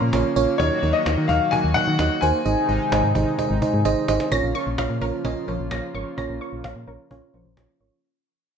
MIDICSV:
0, 0, Header, 1, 7, 480
1, 0, Start_track
1, 0, Key_signature, -5, "minor"
1, 0, Tempo, 465116
1, 615, Time_signature, 4, 2, 24, 8
1, 8845, End_track
2, 0, Start_track
2, 0, Title_t, "Synth pluck"
2, 0, Program_c, 0, 84
2, 4455, Note_on_c, 0, 94, 100
2, 4591, Note_off_c, 0, 94, 0
2, 4695, Note_on_c, 0, 85, 84
2, 4831, Note_off_c, 0, 85, 0
2, 4936, Note_on_c, 0, 77, 92
2, 5071, Note_off_c, 0, 77, 0
2, 5176, Note_on_c, 0, 70, 83
2, 5312, Note_off_c, 0, 70, 0
2, 5415, Note_on_c, 0, 61, 85
2, 5551, Note_off_c, 0, 61, 0
2, 5655, Note_on_c, 0, 53, 76
2, 5791, Note_off_c, 0, 53, 0
2, 5895, Note_on_c, 0, 94, 92
2, 6031, Note_off_c, 0, 94, 0
2, 6136, Note_on_c, 0, 85, 84
2, 6271, Note_off_c, 0, 85, 0
2, 6376, Note_on_c, 0, 94, 106
2, 6512, Note_off_c, 0, 94, 0
2, 6616, Note_on_c, 0, 85, 85
2, 6752, Note_off_c, 0, 85, 0
2, 6855, Note_on_c, 0, 77, 89
2, 6991, Note_off_c, 0, 77, 0
2, 7096, Note_on_c, 0, 70, 80
2, 7231, Note_off_c, 0, 70, 0
2, 7336, Note_on_c, 0, 61, 88
2, 7472, Note_off_c, 0, 61, 0
2, 7575, Note_on_c, 0, 53, 71
2, 7711, Note_off_c, 0, 53, 0
2, 7815, Note_on_c, 0, 94, 90
2, 7951, Note_off_c, 0, 94, 0
2, 8056, Note_on_c, 0, 85, 82
2, 8191, Note_off_c, 0, 85, 0
2, 8845, End_track
3, 0, Start_track
3, 0, Title_t, "Grand piano"
3, 0, Program_c, 1, 0
3, 0, Note_on_c, 1, 82, 95
3, 109, Note_off_c, 1, 82, 0
3, 600, Note_on_c, 1, 73, 103
3, 959, Note_on_c, 1, 75, 100
3, 979, Note_off_c, 1, 73, 0
3, 1301, Note_off_c, 1, 75, 0
3, 1319, Note_on_c, 1, 77, 102
3, 1559, Note_on_c, 1, 80, 108
3, 1575, Note_off_c, 1, 77, 0
3, 1790, Note_off_c, 1, 80, 0
3, 1799, Note_on_c, 1, 78, 120
3, 2279, Note_on_c, 1, 80, 104
3, 2302, Note_off_c, 1, 78, 0
3, 3926, Note_off_c, 1, 80, 0
3, 8845, End_track
4, 0, Start_track
4, 0, Title_t, "FM electric piano"
4, 0, Program_c, 2, 5
4, 135, Note_on_c, 2, 61, 101
4, 135, Note_on_c, 2, 65, 88
4, 135, Note_on_c, 2, 70, 90
4, 135, Note_on_c, 2, 73, 106
4, 325, Note_off_c, 2, 61, 0
4, 325, Note_off_c, 2, 65, 0
4, 325, Note_off_c, 2, 70, 0
4, 325, Note_off_c, 2, 73, 0
4, 374, Note_on_c, 2, 61, 116
4, 374, Note_on_c, 2, 65, 113
4, 374, Note_on_c, 2, 70, 105
4, 374, Note_on_c, 2, 73, 127
4, 564, Note_off_c, 2, 61, 0
4, 564, Note_off_c, 2, 65, 0
4, 564, Note_off_c, 2, 70, 0
4, 564, Note_off_c, 2, 73, 0
4, 615, Note_on_c, 2, 63, 99
4, 615, Note_on_c, 2, 66, 93
4, 615, Note_on_c, 2, 70, 94
4, 615, Note_on_c, 2, 75, 111
4, 805, Note_off_c, 2, 63, 0
4, 805, Note_off_c, 2, 66, 0
4, 805, Note_off_c, 2, 70, 0
4, 805, Note_off_c, 2, 75, 0
4, 855, Note_on_c, 2, 63, 77
4, 855, Note_on_c, 2, 66, 72
4, 855, Note_on_c, 2, 70, 69
4, 855, Note_on_c, 2, 75, 88
4, 1045, Note_off_c, 2, 63, 0
4, 1045, Note_off_c, 2, 66, 0
4, 1045, Note_off_c, 2, 70, 0
4, 1045, Note_off_c, 2, 75, 0
4, 1095, Note_on_c, 2, 66, 69
4, 1095, Note_on_c, 2, 70, 68
4, 1096, Note_on_c, 2, 63, 79
4, 1096, Note_on_c, 2, 75, 89
4, 1285, Note_off_c, 2, 63, 0
4, 1285, Note_off_c, 2, 66, 0
4, 1285, Note_off_c, 2, 70, 0
4, 1285, Note_off_c, 2, 75, 0
4, 1336, Note_on_c, 2, 66, 72
4, 1336, Note_on_c, 2, 70, 68
4, 1336, Note_on_c, 2, 75, 83
4, 1337, Note_on_c, 2, 63, 74
4, 1525, Note_off_c, 2, 75, 0
4, 1526, Note_off_c, 2, 63, 0
4, 1526, Note_off_c, 2, 66, 0
4, 1526, Note_off_c, 2, 70, 0
4, 1575, Note_on_c, 2, 63, 76
4, 1575, Note_on_c, 2, 66, 69
4, 1575, Note_on_c, 2, 70, 72
4, 1575, Note_on_c, 2, 75, 84
4, 1765, Note_off_c, 2, 63, 0
4, 1765, Note_off_c, 2, 66, 0
4, 1765, Note_off_c, 2, 70, 0
4, 1765, Note_off_c, 2, 75, 0
4, 1815, Note_on_c, 2, 63, 78
4, 1815, Note_on_c, 2, 66, 72
4, 1815, Note_on_c, 2, 70, 73
4, 1815, Note_on_c, 2, 75, 86
4, 2005, Note_off_c, 2, 63, 0
4, 2005, Note_off_c, 2, 66, 0
4, 2005, Note_off_c, 2, 70, 0
4, 2005, Note_off_c, 2, 75, 0
4, 2054, Note_on_c, 2, 63, 98
4, 2054, Note_on_c, 2, 66, 91
4, 2054, Note_on_c, 2, 70, 92
4, 2054, Note_on_c, 2, 75, 109
4, 2244, Note_off_c, 2, 63, 0
4, 2244, Note_off_c, 2, 66, 0
4, 2244, Note_off_c, 2, 70, 0
4, 2244, Note_off_c, 2, 75, 0
4, 2294, Note_on_c, 2, 63, 100
4, 2294, Note_on_c, 2, 66, 92
4, 2294, Note_on_c, 2, 70, 93
4, 2294, Note_on_c, 2, 72, 111
4, 2484, Note_off_c, 2, 63, 0
4, 2484, Note_off_c, 2, 66, 0
4, 2484, Note_off_c, 2, 70, 0
4, 2484, Note_off_c, 2, 72, 0
4, 2534, Note_on_c, 2, 63, 98
4, 2534, Note_on_c, 2, 68, 92
4, 2534, Note_on_c, 2, 72, 94
4, 2535, Note_on_c, 2, 75, 112
4, 2724, Note_off_c, 2, 63, 0
4, 2724, Note_off_c, 2, 68, 0
4, 2724, Note_off_c, 2, 72, 0
4, 2725, Note_off_c, 2, 75, 0
4, 2773, Note_on_c, 2, 72, 70
4, 2773, Note_on_c, 2, 75, 83
4, 2774, Note_on_c, 2, 63, 73
4, 2774, Note_on_c, 2, 68, 73
4, 2964, Note_off_c, 2, 63, 0
4, 2964, Note_off_c, 2, 68, 0
4, 2964, Note_off_c, 2, 72, 0
4, 2964, Note_off_c, 2, 75, 0
4, 3013, Note_on_c, 2, 68, 85
4, 3013, Note_on_c, 2, 72, 83
4, 3014, Note_on_c, 2, 63, 89
4, 3014, Note_on_c, 2, 75, 100
4, 3204, Note_off_c, 2, 63, 0
4, 3204, Note_off_c, 2, 68, 0
4, 3204, Note_off_c, 2, 72, 0
4, 3204, Note_off_c, 2, 75, 0
4, 3253, Note_on_c, 2, 72, 80
4, 3254, Note_on_c, 2, 63, 87
4, 3254, Note_on_c, 2, 68, 83
4, 3254, Note_on_c, 2, 75, 97
4, 3444, Note_off_c, 2, 63, 0
4, 3444, Note_off_c, 2, 68, 0
4, 3444, Note_off_c, 2, 72, 0
4, 3444, Note_off_c, 2, 75, 0
4, 3494, Note_on_c, 2, 63, 92
4, 3494, Note_on_c, 2, 68, 83
4, 3494, Note_on_c, 2, 72, 85
4, 3494, Note_on_c, 2, 75, 98
4, 3684, Note_off_c, 2, 63, 0
4, 3684, Note_off_c, 2, 68, 0
4, 3684, Note_off_c, 2, 72, 0
4, 3684, Note_off_c, 2, 75, 0
4, 3734, Note_on_c, 2, 68, 84
4, 3735, Note_on_c, 2, 63, 90
4, 3735, Note_on_c, 2, 72, 86
4, 3735, Note_on_c, 2, 75, 98
4, 3924, Note_off_c, 2, 68, 0
4, 3925, Note_off_c, 2, 63, 0
4, 3925, Note_off_c, 2, 72, 0
4, 3925, Note_off_c, 2, 75, 0
4, 3974, Note_on_c, 2, 63, 117
4, 3974, Note_on_c, 2, 68, 106
4, 3974, Note_on_c, 2, 72, 108
4, 3974, Note_on_c, 2, 75, 127
4, 4164, Note_off_c, 2, 63, 0
4, 4164, Note_off_c, 2, 68, 0
4, 4164, Note_off_c, 2, 72, 0
4, 4164, Note_off_c, 2, 75, 0
4, 4214, Note_on_c, 2, 63, 120
4, 4214, Note_on_c, 2, 68, 110
4, 4214, Note_on_c, 2, 72, 108
4, 4214, Note_on_c, 2, 75, 127
4, 4404, Note_off_c, 2, 63, 0
4, 4404, Note_off_c, 2, 68, 0
4, 4404, Note_off_c, 2, 72, 0
4, 4404, Note_off_c, 2, 75, 0
4, 4453, Note_on_c, 2, 65, 100
4, 4453, Note_on_c, 2, 73, 122
4, 4454, Note_on_c, 2, 61, 108
4, 4454, Note_on_c, 2, 70, 104
4, 4644, Note_off_c, 2, 61, 0
4, 4644, Note_off_c, 2, 65, 0
4, 4644, Note_off_c, 2, 70, 0
4, 4644, Note_off_c, 2, 73, 0
4, 4694, Note_on_c, 2, 61, 84
4, 4694, Note_on_c, 2, 65, 75
4, 4694, Note_on_c, 2, 70, 75
4, 4694, Note_on_c, 2, 73, 89
4, 4884, Note_off_c, 2, 61, 0
4, 4884, Note_off_c, 2, 65, 0
4, 4884, Note_off_c, 2, 70, 0
4, 4884, Note_off_c, 2, 73, 0
4, 4933, Note_on_c, 2, 61, 83
4, 4933, Note_on_c, 2, 65, 79
4, 4933, Note_on_c, 2, 70, 81
4, 4933, Note_on_c, 2, 73, 93
4, 5124, Note_off_c, 2, 61, 0
4, 5124, Note_off_c, 2, 65, 0
4, 5124, Note_off_c, 2, 70, 0
4, 5124, Note_off_c, 2, 73, 0
4, 5173, Note_on_c, 2, 70, 74
4, 5174, Note_on_c, 2, 61, 82
4, 5174, Note_on_c, 2, 65, 78
4, 5174, Note_on_c, 2, 73, 89
4, 5364, Note_off_c, 2, 61, 0
4, 5364, Note_off_c, 2, 65, 0
4, 5364, Note_off_c, 2, 70, 0
4, 5364, Note_off_c, 2, 73, 0
4, 5413, Note_on_c, 2, 65, 100
4, 5414, Note_on_c, 2, 61, 113
4, 5414, Note_on_c, 2, 70, 104
4, 5414, Note_on_c, 2, 75, 121
4, 5604, Note_off_c, 2, 61, 0
4, 5604, Note_off_c, 2, 65, 0
4, 5604, Note_off_c, 2, 70, 0
4, 5604, Note_off_c, 2, 75, 0
4, 5654, Note_on_c, 2, 61, 84
4, 5654, Note_on_c, 2, 65, 79
4, 5654, Note_on_c, 2, 70, 77
4, 5654, Note_on_c, 2, 73, 96
4, 5844, Note_off_c, 2, 61, 0
4, 5844, Note_off_c, 2, 65, 0
4, 5844, Note_off_c, 2, 70, 0
4, 5844, Note_off_c, 2, 73, 0
4, 5895, Note_on_c, 2, 61, 85
4, 5895, Note_on_c, 2, 65, 77
4, 5895, Note_on_c, 2, 70, 79
4, 5895, Note_on_c, 2, 73, 89
4, 6085, Note_off_c, 2, 61, 0
4, 6085, Note_off_c, 2, 65, 0
4, 6085, Note_off_c, 2, 70, 0
4, 6085, Note_off_c, 2, 73, 0
4, 6135, Note_on_c, 2, 61, 87
4, 6135, Note_on_c, 2, 65, 77
4, 6135, Note_on_c, 2, 70, 80
4, 6135, Note_on_c, 2, 73, 93
4, 6325, Note_off_c, 2, 61, 0
4, 6325, Note_off_c, 2, 65, 0
4, 6325, Note_off_c, 2, 70, 0
4, 6325, Note_off_c, 2, 73, 0
4, 6374, Note_on_c, 2, 61, 113
4, 6374, Note_on_c, 2, 65, 102
4, 6374, Note_on_c, 2, 70, 97
4, 6374, Note_on_c, 2, 73, 121
4, 6564, Note_off_c, 2, 61, 0
4, 6564, Note_off_c, 2, 65, 0
4, 6564, Note_off_c, 2, 70, 0
4, 6564, Note_off_c, 2, 73, 0
4, 6614, Note_on_c, 2, 61, 83
4, 6614, Note_on_c, 2, 65, 78
4, 6614, Note_on_c, 2, 70, 78
4, 6614, Note_on_c, 2, 73, 91
4, 6804, Note_off_c, 2, 61, 0
4, 6804, Note_off_c, 2, 65, 0
4, 6804, Note_off_c, 2, 70, 0
4, 6804, Note_off_c, 2, 73, 0
4, 6855, Note_on_c, 2, 61, 80
4, 6855, Note_on_c, 2, 65, 77
4, 6855, Note_on_c, 2, 70, 79
4, 6855, Note_on_c, 2, 73, 91
4, 7045, Note_off_c, 2, 61, 0
4, 7045, Note_off_c, 2, 65, 0
4, 7045, Note_off_c, 2, 70, 0
4, 7045, Note_off_c, 2, 73, 0
4, 7094, Note_on_c, 2, 61, 81
4, 7094, Note_on_c, 2, 65, 75
4, 7094, Note_on_c, 2, 73, 90
4, 7095, Note_on_c, 2, 70, 76
4, 7284, Note_off_c, 2, 61, 0
4, 7284, Note_off_c, 2, 65, 0
4, 7284, Note_off_c, 2, 73, 0
4, 7285, Note_off_c, 2, 70, 0
4, 7334, Note_on_c, 2, 61, 107
4, 7335, Note_on_c, 2, 65, 96
4, 7335, Note_on_c, 2, 70, 97
4, 7335, Note_on_c, 2, 73, 115
4, 7525, Note_off_c, 2, 61, 0
4, 7525, Note_off_c, 2, 65, 0
4, 7525, Note_off_c, 2, 70, 0
4, 7525, Note_off_c, 2, 73, 0
4, 7574, Note_on_c, 2, 61, 85
4, 7574, Note_on_c, 2, 65, 74
4, 7574, Note_on_c, 2, 70, 76
4, 7574, Note_on_c, 2, 72, 91
4, 7764, Note_off_c, 2, 61, 0
4, 7764, Note_off_c, 2, 65, 0
4, 7764, Note_off_c, 2, 70, 0
4, 7764, Note_off_c, 2, 72, 0
4, 7815, Note_on_c, 2, 61, 79
4, 7815, Note_on_c, 2, 65, 74
4, 7815, Note_on_c, 2, 70, 73
4, 7815, Note_on_c, 2, 73, 90
4, 8005, Note_off_c, 2, 61, 0
4, 8005, Note_off_c, 2, 65, 0
4, 8005, Note_off_c, 2, 70, 0
4, 8005, Note_off_c, 2, 73, 0
4, 8055, Note_on_c, 2, 61, 85
4, 8055, Note_on_c, 2, 65, 74
4, 8055, Note_on_c, 2, 70, 75
4, 8055, Note_on_c, 2, 73, 89
4, 8245, Note_off_c, 2, 61, 0
4, 8245, Note_off_c, 2, 65, 0
4, 8245, Note_off_c, 2, 70, 0
4, 8245, Note_off_c, 2, 73, 0
4, 8845, End_track
5, 0, Start_track
5, 0, Title_t, "Analog synth pad"
5, 0, Program_c, 3, 89
5, 0, Note_on_c, 3, 49, 79
5, 0, Note_on_c, 3, 53, 75
5, 0, Note_on_c, 3, 58, 75
5, 0, Note_on_c, 3, 61, 89
5, 576, Note_off_c, 3, 49, 0
5, 576, Note_off_c, 3, 61, 0
5, 577, Note_off_c, 3, 53, 0
5, 615, Note_on_c, 3, 51, 81
5, 615, Note_on_c, 3, 54, 74
5, 615, Note_on_c, 3, 66, 91
5, 2494, Note_off_c, 3, 58, 0
5, 2516, Note_off_c, 3, 51, 0
5, 2516, Note_off_c, 3, 54, 0
5, 2516, Note_off_c, 3, 66, 0
5, 2535, Note_on_c, 3, 48, 81
5, 2535, Note_on_c, 3, 56, 72
5, 2535, Note_on_c, 3, 63, 88
5, 2536, Note_on_c, 3, 51, 73
5, 4436, Note_off_c, 3, 48, 0
5, 4436, Note_off_c, 3, 51, 0
5, 4436, Note_off_c, 3, 56, 0
5, 4436, Note_off_c, 3, 63, 0
5, 4454, Note_on_c, 3, 49, 76
5, 4455, Note_on_c, 3, 53, 71
5, 4455, Note_on_c, 3, 58, 71
5, 4455, Note_on_c, 3, 65, 85
5, 8256, Note_off_c, 3, 49, 0
5, 8257, Note_off_c, 3, 53, 0
5, 8257, Note_off_c, 3, 58, 0
5, 8257, Note_off_c, 3, 65, 0
5, 8845, End_track
6, 0, Start_track
6, 0, Title_t, "FM bass"
6, 0, Program_c, 4, 39
6, 16, Note_on_c, 4, 46, 98
6, 118, Note_off_c, 4, 46, 0
6, 135, Note_on_c, 4, 34, 114
6, 238, Note_off_c, 4, 34, 0
6, 375, Note_on_c, 4, 34, 107
6, 478, Note_off_c, 4, 34, 0
6, 615, Note_on_c, 4, 39, 111
6, 718, Note_off_c, 4, 39, 0
6, 855, Note_on_c, 4, 39, 112
6, 958, Note_off_c, 4, 39, 0
6, 1095, Note_on_c, 4, 39, 102
6, 1198, Note_off_c, 4, 39, 0
6, 1215, Note_on_c, 4, 51, 108
6, 1318, Note_off_c, 4, 51, 0
6, 1332, Note_on_c, 4, 39, 105
6, 1436, Note_off_c, 4, 39, 0
6, 1696, Note_on_c, 4, 39, 97
6, 1798, Note_off_c, 4, 39, 0
6, 1937, Note_on_c, 4, 51, 101
6, 2039, Note_off_c, 4, 51, 0
6, 2056, Note_on_c, 4, 39, 106
6, 2159, Note_off_c, 4, 39, 0
6, 2296, Note_on_c, 4, 39, 109
6, 2398, Note_off_c, 4, 39, 0
6, 2536, Note_on_c, 4, 32, 111
6, 2638, Note_off_c, 4, 32, 0
6, 2776, Note_on_c, 4, 32, 101
6, 2878, Note_off_c, 4, 32, 0
6, 3016, Note_on_c, 4, 32, 110
6, 3118, Note_off_c, 4, 32, 0
6, 3136, Note_on_c, 4, 44, 102
6, 3238, Note_off_c, 4, 44, 0
6, 3252, Note_on_c, 4, 32, 109
6, 3356, Note_off_c, 4, 32, 0
6, 3617, Note_on_c, 4, 32, 103
6, 3719, Note_off_c, 4, 32, 0
6, 3856, Note_on_c, 4, 44, 103
6, 3959, Note_off_c, 4, 44, 0
6, 3976, Note_on_c, 4, 32, 106
6, 4079, Note_off_c, 4, 32, 0
6, 4215, Note_on_c, 4, 32, 105
6, 4318, Note_off_c, 4, 32, 0
6, 4455, Note_on_c, 4, 34, 104
6, 4558, Note_off_c, 4, 34, 0
6, 4575, Note_on_c, 4, 34, 103
6, 4678, Note_off_c, 4, 34, 0
6, 4817, Note_on_c, 4, 34, 95
6, 4919, Note_off_c, 4, 34, 0
6, 4936, Note_on_c, 4, 34, 96
6, 5038, Note_off_c, 4, 34, 0
6, 5055, Note_on_c, 4, 46, 93
6, 5158, Note_off_c, 4, 46, 0
6, 5176, Note_on_c, 4, 34, 103
6, 5278, Note_off_c, 4, 34, 0
6, 5415, Note_on_c, 4, 34, 112
6, 5518, Note_off_c, 4, 34, 0
6, 5656, Note_on_c, 4, 34, 90
6, 5759, Note_off_c, 4, 34, 0
6, 5775, Note_on_c, 4, 34, 93
6, 5878, Note_off_c, 4, 34, 0
6, 5893, Note_on_c, 4, 34, 102
6, 5997, Note_off_c, 4, 34, 0
6, 6135, Note_on_c, 4, 32, 88
6, 6238, Note_off_c, 4, 32, 0
6, 6376, Note_on_c, 4, 34, 103
6, 6478, Note_off_c, 4, 34, 0
6, 6495, Note_on_c, 4, 34, 99
6, 6598, Note_off_c, 4, 34, 0
6, 6735, Note_on_c, 4, 34, 91
6, 6838, Note_off_c, 4, 34, 0
6, 6855, Note_on_c, 4, 34, 96
6, 6958, Note_off_c, 4, 34, 0
6, 6975, Note_on_c, 4, 46, 96
6, 7078, Note_off_c, 4, 46, 0
6, 7095, Note_on_c, 4, 34, 104
6, 7198, Note_off_c, 4, 34, 0
6, 7336, Note_on_c, 4, 34, 110
6, 7438, Note_off_c, 4, 34, 0
6, 7575, Note_on_c, 4, 34, 92
6, 7678, Note_off_c, 4, 34, 0
6, 7694, Note_on_c, 4, 34, 94
6, 7797, Note_off_c, 4, 34, 0
6, 7813, Note_on_c, 4, 34, 102
6, 7917, Note_off_c, 4, 34, 0
6, 8055, Note_on_c, 4, 32, 86
6, 8158, Note_off_c, 4, 32, 0
6, 8845, End_track
7, 0, Start_track
7, 0, Title_t, "Cajon"
7, 13, Note_on_c, 9, 38, 37
7, 116, Note_off_c, 9, 38, 0
7, 134, Note_on_c, 9, 38, 119
7, 237, Note_off_c, 9, 38, 0
7, 257, Note_on_c, 9, 38, 31
7, 360, Note_off_c, 9, 38, 0
7, 375, Note_on_c, 9, 38, 51
7, 479, Note_off_c, 9, 38, 0
7, 493, Note_on_c, 9, 38, 30
7, 597, Note_off_c, 9, 38, 0
7, 615, Note_on_c, 9, 36, 115
7, 719, Note_off_c, 9, 36, 0
7, 735, Note_on_c, 9, 38, 31
7, 838, Note_off_c, 9, 38, 0
7, 857, Note_on_c, 9, 38, 45
7, 960, Note_off_c, 9, 38, 0
7, 975, Note_on_c, 9, 38, 28
7, 1079, Note_off_c, 9, 38, 0
7, 1096, Note_on_c, 9, 38, 113
7, 1199, Note_off_c, 9, 38, 0
7, 1216, Note_on_c, 9, 38, 31
7, 1319, Note_off_c, 9, 38, 0
7, 1332, Note_on_c, 9, 36, 93
7, 1435, Note_off_c, 9, 36, 0
7, 1453, Note_on_c, 9, 38, 31
7, 1556, Note_off_c, 9, 38, 0
7, 1576, Note_on_c, 9, 36, 93
7, 1679, Note_off_c, 9, 36, 0
7, 1696, Note_on_c, 9, 38, 28
7, 1799, Note_off_c, 9, 38, 0
7, 1816, Note_on_c, 9, 36, 88
7, 1920, Note_off_c, 9, 36, 0
7, 1933, Note_on_c, 9, 38, 36
7, 2036, Note_off_c, 9, 38, 0
7, 2053, Note_on_c, 9, 38, 117
7, 2156, Note_off_c, 9, 38, 0
7, 2176, Note_on_c, 9, 38, 31
7, 2279, Note_off_c, 9, 38, 0
7, 2535, Note_on_c, 9, 38, 48
7, 2638, Note_off_c, 9, 38, 0
7, 2654, Note_on_c, 9, 38, 31
7, 2757, Note_off_c, 9, 38, 0
7, 2777, Note_on_c, 9, 38, 46
7, 2880, Note_off_c, 9, 38, 0
7, 2895, Note_on_c, 9, 38, 28
7, 2999, Note_off_c, 9, 38, 0
7, 3016, Note_on_c, 9, 38, 114
7, 3119, Note_off_c, 9, 38, 0
7, 3136, Note_on_c, 9, 38, 32
7, 3239, Note_off_c, 9, 38, 0
7, 3252, Note_on_c, 9, 36, 93
7, 3355, Note_off_c, 9, 36, 0
7, 3372, Note_on_c, 9, 38, 30
7, 3475, Note_off_c, 9, 38, 0
7, 3495, Note_on_c, 9, 36, 90
7, 3598, Note_off_c, 9, 36, 0
7, 3616, Note_on_c, 9, 38, 27
7, 3720, Note_off_c, 9, 38, 0
7, 3736, Note_on_c, 9, 36, 92
7, 3839, Note_off_c, 9, 36, 0
7, 3853, Note_on_c, 9, 38, 38
7, 3956, Note_off_c, 9, 38, 0
7, 3975, Note_on_c, 9, 38, 64
7, 4078, Note_off_c, 9, 38, 0
7, 4096, Note_on_c, 9, 38, 30
7, 4200, Note_off_c, 9, 38, 0
7, 4215, Note_on_c, 9, 38, 104
7, 4318, Note_off_c, 9, 38, 0
7, 4335, Note_on_c, 9, 38, 95
7, 4438, Note_off_c, 9, 38, 0
7, 4456, Note_on_c, 9, 36, 105
7, 4559, Note_off_c, 9, 36, 0
7, 4697, Note_on_c, 9, 38, 41
7, 4800, Note_off_c, 9, 38, 0
7, 4936, Note_on_c, 9, 36, 108
7, 4936, Note_on_c, 9, 38, 108
7, 5039, Note_off_c, 9, 36, 0
7, 5039, Note_off_c, 9, 38, 0
7, 5178, Note_on_c, 9, 38, 38
7, 5282, Note_off_c, 9, 38, 0
7, 5416, Note_on_c, 9, 36, 103
7, 5519, Note_off_c, 9, 36, 0
7, 5654, Note_on_c, 9, 38, 37
7, 5757, Note_off_c, 9, 38, 0
7, 5893, Note_on_c, 9, 36, 111
7, 5894, Note_on_c, 9, 38, 106
7, 5996, Note_off_c, 9, 36, 0
7, 5997, Note_off_c, 9, 38, 0
7, 6134, Note_on_c, 9, 38, 45
7, 6237, Note_off_c, 9, 38, 0
7, 6376, Note_on_c, 9, 36, 104
7, 6479, Note_off_c, 9, 36, 0
7, 6617, Note_on_c, 9, 38, 41
7, 6720, Note_off_c, 9, 38, 0
7, 6855, Note_on_c, 9, 38, 104
7, 6856, Note_on_c, 9, 36, 110
7, 6958, Note_off_c, 9, 38, 0
7, 6959, Note_off_c, 9, 36, 0
7, 7098, Note_on_c, 9, 38, 37
7, 7202, Note_off_c, 9, 38, 0
7, 7336, Note_on_c, 9, 36, 101
7, 7439, Note_off_c, 9, 36, 0
7, 7574, Note_on_c, 9, 38, 36
7, 7677, Note_off_c, 9, 38, 0
7, 7813, Note_on_c, 9, 36, 111
7, 7814, Note_on_c, 9, 38, 102
7, 7916, Note_off_c, 9, 36, 0
7, 7917, Note_off_c, 9, 38, 0
7, 8845, End_track
0, 0, End_of_file